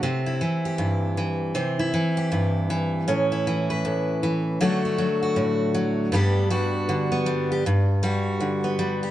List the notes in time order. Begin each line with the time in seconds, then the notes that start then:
0.03 C3 C4
0.26 E4
0.41 E3
0.65 G4
0.78 G2
1.17 E3
1.55 C3 C4
1.79 E4
1.94 E3
2.17 G4
2.32 G2
2.70 E3
3.08 A2 C#4
3.32 E4
3.47 E3
3.70 B4
3.85 A2
4.23 E3
4.61 D3 F#3 A3 D4 F#4
4.85 D4
4.98 F#3
5.23 F#4
5.36 A2
5.74 F#3
6.12 G2 G3 B3 D4 G4
6.50 G3 F#4
6.89 D3
7.12 B3
7.26 G3
7.52 G4
7.66 G2
8.03 G3 F#4
8.40 D3
8.64 B3
8.79 G3
9.03 G4